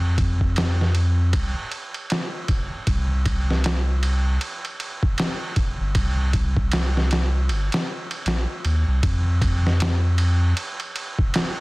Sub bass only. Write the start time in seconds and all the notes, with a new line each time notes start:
Already playing: F2
1.33 C2
2.87 C2
5.80 G1
5.95 C2
7.49 G1
8.26 A#1
8.65 D#2
8.88 C2
9.03 F2